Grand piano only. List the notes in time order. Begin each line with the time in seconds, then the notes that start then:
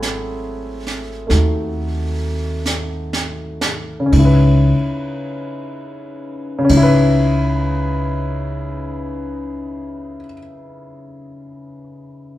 Already playing: F#3 A3 C4 E4 G#4 F#5
1.27 A3 D#4 F#4
4.00 C#3
4.06 C#4
4.13 D#4
4.19 E4
4.25 B4
6.59 C#3
6.65 C#4
6.70 D#4
6.77 E4
6.83 B4